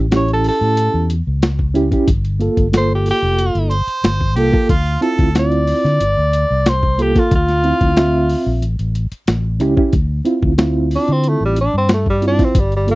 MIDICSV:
0, 0, Header, 1, 7, 480
1, 0, Start_track
1, 0, Key_signature, -1, "minor"
1, 0, Tempo, 654308
1, 1528, Time_signature, 4, 2, 24, 8
1, 9501, End_track
2, 0, Start_track
2, 0, Title_t, "Harmonica"
2, 0, Program_c, 0, 22
2, 2720, Note_on_c, 0, 72, 102
2, 3190, Note_off_c, 0, 72, 0
2, 3199, Note_on_c, 0, 67, 77
2, 3436, Note_off_c, 0, 67, 0
2, 3447, Note_on_c, 0, 65, 83
2, 3681, Note_off_c, 0, 65, 0
2, 3684, Note_on_c, 0, 69, 80
2, 3919, Note_off_c, 0, 69, 0
2, 9501, End_track
3, 0, Start_track
3, 0, Title_t, "Reed electric piano"
3, 0, Program_c, 1, 4
3, 81, Note_on_c, 1, 61, 67
3, 91, Note_on_c, 1, 64, 62
3, 97, Note_on_c, 1, 67, 69
3, 829, Note_off_c, 1, 61, 0
3, 834, Note_off_c, 1, 64, 0
3, 837, Note_off_c, 1, 67, 0
3, 1278, Note_on_c, 1, 61, 84
3, 1285, Note_on_c, 1, 64, 82
3, 1292, Note_on_c, 1, 67, 99
3, 1379, Note_off_c, 1, 61, 0
3, 1382, Note_off_c, 1, 64, 0
3, 1385, Note_off_c, 1, 67, 0
3, 1402, Note_on_c, 1, 61, 80
3, 1412, Note_on_c, 1, 64, 71
3, 1417, Note_on_c, 1, 67, 93
3, 1524, Note_off_c, 1, 61, 0
3, 1529, Note_off_c, 1, 64, 0
3, 1531, Note_off_c, 1, 67, 0
3, 1757, Note_on_c, 1, 58, 75
3, 1766, Note_on_c, 1, 65, 72
3, 1773, Note_on_c, 1, 69, 85
3, 1950, Note_off_c, 1, 58, 0
3, 1954, Note_off_c, 1, 65, 0
3, 1958, Note_off_c, 1, 69, 0
3, 1995, Note_on_c, 1, 58, 66
3, 2002, Note_on_c, 1, 65, 63
3, 2010, Note_on_c, 1, 69, 76
3, 2746, Note_off_c, 1, 58, 0
3, 2749, Note_off_c, 1, 65, 0
3, 2753, Note_off_c, 1, 69, 0
3, 3201, Note_on_c, 1, 58, 89
3, 3208, Note_on_c, 1, 65, 80
3, 3214, Note_on_c, 1, 69, 96
3, 3300, Note_off_c, 1, 58, 0
3, 3303, Note_off_c, 1, 65, 0
3, 3306, Note_off_c, 1, 69, 0
3, 3320, Note_on_c, 1, 58, 85
3, 3325, Note_on_c, 1, 65, 78
3, 3332, Note_on_c, 1, 69, 89
3, 3442, Note_off_c, 1, 58, 0
3, 3445, Note_off_c, 1, 65, 0
3, 3449, Note_off_c, 1, 69, 0
3, 3677, Note_on_c, 1, 60, 74
3, 3684, Note_on_c, 1, 64, 73
3, 3693, Note_on_c, 1, 65, 89
3, 3870, Note_off_c, 1, 60, 0
3, 3873, Note_off_c, 1, 64, 0
3, 3878, Note_off_c, 1, 65, 0
3, 3922, Note_on_c, 1, 60, 69
3, 3932, Note_on_c, 1, 64, 61
3, 3939, Note_on_c, 1, 65, 75
3, 4405, Note_off_c, 1, 60, 0
3, 4410, Note_off_c, 1, 64, 0
3, 4413, Note_off_c, 1, 65, 0
3, 5122, Note_on_c, 1, 58, 77
3, 5127, Note_on_c, 1, 65, 70
3, 5134, Note_on_c, 1, 69, 83
3, 5220, Note_off_c, 1, 58, 0
3, 5223, Note_off_c, 1, 65, 0
3, 5226, Note_off_c, 1, 69, 0
3, 5244, Note_on_c, 1, 58, 71
3, 5251, Note_on_c, 1, 65, 60
3, 5260, Note_on_c, 1, 69, 76
3, 5364, Note_off_c, 1, 58, 0
3, 5368, Note_off_c, 1, 65, 0
3, 5372, Note_off_c, 1, 69, 0
3, 5605, Note_on_c, 1, 60, 65
3, 5613, Note_on_c, 1, 64, 62
3, 5622, Note_on_c, 1, 65, 71
3, 5794, Note_off_c, 1, 60, 0
3, 5798, Note_off_c, 1, 64, 0
3, 5802, Note_off_c, 1, 65, 0
3, 5848, Note_on_c, 1, 60, 70
3, 5851, Note_on_c, 1, 76, 66
3, 5860, Note_on_c, 1, 65, 76
3, 6328, Note_off_c, 1, 60, 0
3, 6329, Note_off_c, 1, 76, 0
3, 6334, Note_off_c, 1, 65, 0
3, 7041, Note_on_c, 1, 61, 81
3, 7048, Note_on_c, 1, 64, 79
3, 7056, Note_on_c, 1, 67, 91
3, 7140, Note_off_c, 1, 61, 0
3, 7143, Note_off_c, 1, 64, 0
3, 7147, Note_off_c, 1, 67, 0
3, 7162, Note_on_c, 1, 61, 83
3, 7171, Note_on_c, 1, 64, 78
3, 7176, Note_on_c, 1, 67, 82
3, 7283, Note_off_c, 1, 61, 0
3, 7288, Note_off_c, 1, 64, 0
3, 7290, Note_off_c, 1, 67, 0
3, 7517, Note_on_c, 1, 60, 76
3, 7526, Note_on_c, 1, 64, 68
3, 7533, Note_on_c, 1, 65, 80
3, 7709, Note_off_c, 1, 60, 0
3, 7714, Note_off_c, 1, 64, 0
3, 7717, Note_off_c, 1, 65, 0
3, 7760, Note_on_c, 1, 60, 80
3, 7767, Note_on_c, 1, 64, 76
3, 7774, Note_on_c, 1, 65, 91
3, 8507, Note_off_c, 1, 60, 0
3, 8511, Note_off_c, 1, 64, 0
3, 8514, Note_off_c, 1, 65, 0
3, 8962, Note_on_c, 1, 60, 69
3, 8967, Note_on_c, 1, 64, 67
3, 8974, Note_on_c, 1, 65, 80
3, 9059, Note_off_c, 1, 60, 0
3, 9062, Note_off_c, 1, 64, 0
3, 9065, Note_off_c, 1, 65, 0
3, 9083, Note_on_c, 1, 60, 69
3, 9091, Note_on_c, 1, 64, 69
3, 9098, Note_on_c, 1, 65, 81
3, 9203, Note_off_c, 1, 60, 0
3, 9207, Note_off_c, 1, 64, 0
3, 9210, Note_off_c, 1, 65, 0
3, 9442, Note_on_c, 1, 58, 64
3, 9451, Note_on_c, 1, 65, 57
3, 9456, Note_on_c, 1, 69, 66
3, 9501, Note_off_c, 1, 58, 0
3, 9501, Note_off_c, 1, 65, 0
3, 9501, Note_off_c, 1, 69, 0
3, 9501, End_track
4, 0, Start_track
4, 0, Title_t, "Tenor saxophone"
4, 0, Program_c, 2, 66
4, 117, Note_on_c, 2, 73, 72
4, 218, Note_off_c, 2, 73, 0
4, 243, Note_on_c, 2, 69, 87
4, 337, Note_off_c, 2, 69, 0
4, 355, Note_on_c, 2, 69, 96
4, 808, Note_off_c, 2, 69, 0
4, 2032, Note_on_c, 2, 72, 82
4, 2136, Note_off_c, 2, 72, 0
4, 2161, Note_on_c, 2, 67, 70
4, 2256, Note_off_c, 2, 67, 0
4, 2278, Note_on_c, 2, 67, 90
4, 2729, Note_off_c, 2, 67, 0
4, 3953, Note_on_c, 2, 74, 91
4, 4908, Note_on_c, 2, 72, 76
4, 4919, Note_off_c, 2, 74, 0
4, 5150, Note_on_c, 2, 67, 74
4, 5161, Note_off_c, 2, 72, 0
4, 5274, Note_on_c, 2, 65, 72
4, 5285, Note_off_c, 2, 67, 0
4, 5372, Note_off_c, 2, 65, 0
4, 5395, Note_on_c, 2, 65, 94
4, 6312, Note_off_c, 2, 65, 0
4, 8034, Note_on_c, 2, 62, 95
4, 8158, Note_on_c, 2, 60, 81
4, 8169, Note_off_c, 2, 62, 0
4, 8279, Note_on_c, 2, 57, 76
4, 8290, Note_off_c, 2, 60, 0
4, 8378, Note_off_c, 2, 57, 0
4, 8400, Note_on_c, 2, 55, 76
4, 8495, Note_off_c, 2, 55, 0
4, 8515, Note_on_c, 2, 62, 85
4, 8616, Note_off_c, 2, 62, 0
4, 8637, Note_on_c, 2, 60, 81
4, 8733, Note_off_c, 2, 60, 0
4, 8756, Note_on_c, 2, 57, 76
4, 8856, Note_off_c, 2, 57, 0
4, 8875, Note_on_c, 2, 55, 87
4, 8971, Note_off_c, 2, 55, 0
4, 9005, Note_on_c, 2, 62, 87
4, 9125, Note_on_c, 2, 60, 75
4, 9136, Note_off_c, 2, 62, 0
4, 9240, Note_on_c, 2, 55, 77
4, 9251, Note_off_c, 2, 60, 0
4, 9338, Note_off_c, 2, 55, 0
4, 9363, Note_on_c, 2, 55, 84
4, 9456, Note_off_c, 2, 55, 0
4, 9471, Note_on_c, 2, 58, 91
4, 9501, Note_off_c, 2, 58, 0
4, 9501, End_track
5, 0, Start_track
5, 0, Title_t, "Fingered electric bass"
5, 0, Program_c, 3, 33
5, 0, Note_on_c, 3, 33, 76
5, 356, Note_off_c, 3, 33, 0
5, 449, Note_on_c, 3, 45, 78
5, 643, Note_off_c, 3, 45, 0
5, 689, Note_on_c, 3, 40, 68
5, 883, Note_off_c, 3, 40, 0
5, 932, Note_on_c, 3, 37, 81
5, 1412, Note_off_c, 3, 37, 0
5, 1524, Note_on_c, 3, 31, 94
5, 1818, Note_off_c, 3, 31, 0
5, 1889, Note_on_c, 3, 31, 81
5, 2276, Note_off_c, 3, 31, 0
5, 2365, Note_on_c, 3, 29, 78
5, 2561, Note_off_c, 3, 29, 0
5, 2604, Note_on_c, 3, 31, 83
5, 2800, Note_off_c, 3, 31, 0
5, 2961, Note_on_c, 3, 31, 87
5, 3201, Note_off_c, 3, 31, 0
5, 3201, Note_on_c, 3, 36, 84
5, 3303, Note_off_c, 3, 36, 0
5, 3442, Note_on_c, 3, 38, 93
5, 3638, Note_off_c, 3, 38, 0
5, 3806, Note_on_c, 3, 38, 81
5, 4194, Note_off_c, 3, 38, 0
5, 4289, Note_on_c, 3, 50, 80
5, 4384, Note_off_c, 3, 50, 0
5, 4406, Note_on_c, 3, 31, 97
5, 4506, Note_off_c, 3, 31, 0
5, 4530, Note_on_c, 3, 38, 74
5, 4723, Note_off_c, 3, 38, 0
5, 4772, Note_on_c, 3, 36, 79
5, 5252, Note_off_c, 3, 36, 0
5, 5367, Note_on_c, 3, 38, 99
5, 5659, Note_off_c, 3, 38, 0
5, 5730, Note_on_c, 3, 38, 78
5, 6116, Note_off_c, 3, 38, 0
5, 6210, Note_on_c, 3, 34, 81
5, 6304, Note_off_c, 3, 34, 0
5, 6322, Note_on_c, 3, 33, 93
5, 6423, Note_off_c, 3, 33, 0
5, 6450, Note_on_c, 3, 33, 80
5, 6643, Note_off_c, 3, 33, 0
5, 6808, Note_on_c, 3, 33, 85
5, 7047, Note_off_c, 3, 33, 0
5, 7047, Note_on_c, 3, 37, 80
5, 7146, Note_off_c, 3, 37, 0
5, 7285, Note_on_c, 3, 38, 94
5, 7479, Note_off_c, 3, 38, 0
5, 7650, Note_on_c, 3, 38, 80
5, 8036, Note_off_c, 3, 38, 0
5, 8132, Note_on_c, 3, 50, 81
5, 8324, Note_off_c, 3, 50, 0
5, 8367, Note_on_c, 3, 33, 76
5, 8561, Note_off_c, 3, 33, 0
5, 8610, Note_on_c, 3, 43, 75
5, 9090, Note_off_c, 3, 43, 0
5, 9205, Note_on_c, 3, 31, 99
5, 9497, Note_off_c, 3, 31, 0
5, 9501, End_track
6, 0, Start_track
6, 0, Title_t, "Muted fingered electric bass strokes"
6, 2841, Note_on_c, 9, 29, 36
6, 2915, Note_off_c, 9, 29, 0
6, 6688, Note_on_c, 9, 29, 34
6, 6761, Note_off_c, 9, 29, 0
6, 9501, End_track
7, 0, Start_track
7, 0, Title_t, "Drums"
7, 85, Note_on_c, 9, 42, 77
7, 89, Note_on_c, 9, 38, 105
7, 158, Note_off_c, 9, 42, 0
7, 162, Note_off_c, 9, 38, 0
7, 208, Note_on_c, 9, 42, 32
7, 282, Note_off_c, 9, 42, 0
7, 325, Note_on_c, 9, 46, 69
7, 398, Note_off_c, 9, 46, 0
7, 566, Note_on_c, 9, 42, 75
7, 639, Note_off_c, 9, 42, 0
7, 806, Note_on_c, 9, 42, 54
7, 879, Note_off_c, 9, 42, 0
7, 1044, Note_on_c, 9, 42, 76
7, 1048, Note_on_c, 9, 38, 111
7, 1118, Note_off_c, 9, 42, 0
7, 1121, Note_off_c, 9, 38, 0
7, 1166, Note_on_c, 9, 36, 69
7, 1240, Note_off_c, 9, 36, 0
7, 1285, Note_on_c, 9, 42, 60
7, 1358, Note_off_c, 9, 42, 0
7, 1407, Note_on_c, 9, 36, 84
7, 1408, Note_on_c, 9, 42, 39
7, 1480, Note_off_c, 9, 36, 0
7, 1481, Note_off_c, 9, 42, 0
7, 1523, Note_on_c, 9, 36, 103
7, 1524, Note_on_c, 9, 42, 80
7, 1597, Note_off_c, 9, 36, 0
7, 1597, Note_off_c, 9, 42, 0
7, 1648, Note_on_c, 9, 42, 38
7, 1722, Note_off_c, 9, 42, 0
7, 1765, Note_on_c, 9, 42, 63
7, 1838, Note_off_c, 9, 42, 0
7, 1887, Note_on_c, 9, 36, 82
7, 1888, Note_on_c, 9, 42, 38
7, 1960, Note_off_c, 9, 36, 0
7, 1961, Note_off_c, 9, 42, 0
7, 2006, Note_on_c, 9, 42, 89
7, 2009, Note_on_c, 9, 38, 114
7, 2079, Note_off_c, 9, 42, 0
7, 2083, Note_off_c, 9, 38, 0
7, 2245, Note_on_c, 9, 46, 72
7, 2318, Note_off_c, 9, 46, 0
7, 2483, Note_on_c, 9, 42, 89
7, 2557, Note_off_c, 9, 42, 0
7, 2606, Note_on_c, 9, 42, 38
7, 2679, Note_off_c, 9, 42, 0
7, 2720, Note_on_c, 9, 42, 60
7, 2794, Note_off_c, 9, 42, 0
7, 2846, Note_on_c, 9, 42, 41
7, 2919, Note_off_c, 9, 42, 0
7, 2964, Note_on_c, 9, 42, 89
7, 2968, Note_on_c, 9, 38, 109
7, 3037, Note_off_c, 9, 42, 0
7, 3041, Note_off_c, 9, 38, 0
7, 3086, Note_on_c, 9, 36, 63
7, 3160, Note_off_c, 9, 36, 0
7, 3202, Note_on_c, 9, 42, 59
7, 3275, Note_off_c, 9, 42, 0
7, 3326, Note_on_c, 9, 36, 90
7, 3399, Note_off_c, 9, 36, 0
7, 3442, Note_on_c, 9, 42, 84
7, 3443, Note_on_c, 9, 36, 110
7, 3515, Note_off_c, 9, 42, 0
7, 3517, Note_off_c, 9, 36, 0
7, 3566, Note_on_c, 9, 42, 38
7, 3639, Note_off_c, 9, 42, 0
7, 3684, Note_on_c, 9, 42, 61
7, 3757, Note_off_c, 9, 42, 0
7, 3805, Note_on_c, 9, 42, 36
7, 3807, Note_on_c, 9, 36, 81
7, 3878, Note_off_c, 9, 42, 0
7, 3880, Note_off_c, 9, 36, 0
7, 3925, Note_on_c, 9, 42, 81
7, 3929, Note_on_c, 9, 38, 100
7, 3998, Note_off_c, 9, 42, 0
7, 4002, Note_off_c, 9, 38, 0
7, 4047, Note_on_c, 9, 42, 33
7, 4120, Note_off_c, 9, 42, 0
7, 4163, Note_on_c, 9, 46, 73
7, 4236, Note_off_c, 9, 46, 0
7, 4292, Note_on_c, 9, 38, 30
7, 4365, Note_off_c, 9, 38, 0
7, 4405, Note_on_c, 9, 42, 78
7, 4478, Note_off_c, 9, 42, 0
7, 4646, Note_on_c, 9, 42, 55
7, 4719, Note_off_c, 9, 42, 0
7, 4885, Note_on_c, 9, 42, 84
7, 4888, Note_on_c, 9, 38, 107
7, 4958, Note_off_c, 9, 42, 0
7, 4962, Note_off_c, 9, 38, 0
7, 5009, Note_on_c, 9, 36, 66
7, 5083, Note_off_c, 9, 36, 0
7, 5127, Note_on_c, 9, 42, 58
7, 5200, Note_off_c, 9, 42, 0
7, 5249, Note_on_c, 9, 36, 83
7, 5250, Note_on_c, 9, 42, 36
7, 5253, Note_on_c, 9, 38, 35
7, 5323, Note_off_c, 9, 36, 0
7, 5323, Note_off_c, 9, 42, 0
7, 5327, Note_off_c, 9, 38, 0
7, 5365, Note_on_c, 9, 42, 80
7, 5366, Note_on_c, 9, 36, 104
7, 5438, Note_off_c, 9, 42, 0
7, 5439, Note_off_c, 9, 36, 0
7, 5491, Note_on_c, 9, 42, 36
7, 5494, Note_on_c, 9, 38, 33
7, 5564, Note_off_c, 9, 42, 0
7, 5568, Note_off_c, 9, 38, 0
7, 5602, Note_on_c, 9, 42, 59
7, 5676, Note_off_c, 9, 42, 0
7, 5727, Note_on_c, 9, 42, 36
7, 5729, Note_on_c, 9, 36, 80
7, 5800, Note_off_c, 9, 42, 0
7, 5802, Note_off_c, 9, 36, 0
7, 5844, Note_on_c, 9, 42, 87
7, 5848, Note_on_c, 9, 38, 105
7, 5917, Note_off_c, 9, 42, 0
7, 5921, Note_off_c, 9, 38, 0
7, 6085, Note_on_c, 9, 46, 73
7, 6158, Note_off_c, 9, 46, 0
7, 6326, Note_on_c, 9, 42, 80
7, 6400, Note_off_c, 9, 42, 0
7, 6449, Note_on_c, 9, 42, 41
7, 6523, Note_off_c, 9, 42, 0
7, 6566, Note_on_c, 9, 42, 63
7, 6640, Note_off_c, 9, 42, 0
7, 6688, Note_on_c, 9, 42, 37
7, 6761, Note_off_c, 9, 42, 0
7, 6804, Note_on_c, 9, 42, 85
7, 6808, Note_on_c, 9, 38, 110
7, 6877, Note_off_c, 9, 42, 0
7, 6881, Note_off_c, 9, 38, 0
7, 7043, Note_on_c, 9, 42, 64
7, 7116, Note_off_c, 9, 42, 0
7, 7168, Note_on_c, 9, 36, 82
7, 7242, Note_off_c, 9, 36, 0
7, 7282, Note_on_c, 9, 42, 80
7, 7285, Note_on_c, 9, 36, 105
7, 7355, Note_off_c, 9, 42, 0
7, 7359, Note_off_c, 9, 36, 0
7, 7522, Note_on_c, 9, 42, 60
7, 7595, Note_off_c, 9, 42, 0
7, 7648, Note_on_c, 9, 36, 80
7, 7721, Note_off_c, 9, 36, 0
7, 7762, Note_on_c, 9, 42, 79
7, 7766, Note_on_c, 9, 38, 104
7, 7835, Note_off_c, 9, 42, 0
7, 7839, Note_off_c, 9, 38, 0
7, 8004, Note_on_c, 9, 46, 70
7, 8077, Note_off_c, 9, 46, 0
7, 8127, Note_on_c, 9, 42, 35
7, 8200, Note_off_c, 9, 42, 0
7, 8242, Note_on_c, 9, 42, 78
7, 8315, Note_off_c, 9, 42, 0
7, 8483, Note_on_c, 9, 42, 55
7, 8556, Note_off_c, 9, 42, 0
7, 8721, Note_on_c, 9, 42, 74
7, 8725, Note_on_c, 9, 38, 105
7, 8795, Note_off_c, 9, 42, 0
7, 8798, Note_off_c, 9, 38, 0
7, 8849, Note_on_c, 9, 36, 65
7, 8922, Note_off_c, 9, 36, 0
7, 8966, Note_on_c, 9, 42, 61
7, 9039, Note_off_c, 9, 42, 0
7, 9090, Note_on_c, 9, 36, 85
7, 9091, Note_on_c, 9, 42, 38
7, 9094, Note_on_c, 9, 38, 35
7, 9163, Note_off_c, 9, 36, 0
7, 9164, Note_off_c, 9, 42, 0
7, 9168, Note_off_c, 9, 38, 0
7, 9205, Note_on_c, 9, 42, 85
7, 9206, Note_on_c, 9, 36, 106
7, 9279, Note_off_c, 9, 36, 0
7, 9279, Note_off_c, 9, 42, 0
7, 9331, Note_on_c, 9, 42, 38
7, 9405, Note_off_c, 9, 42, 0
7, 9448, Note_on_c, 9, 42, 62
7, 9501, Note_off_c, 9, 42, 0
7, 9501, End_track
0, 0, End_of_file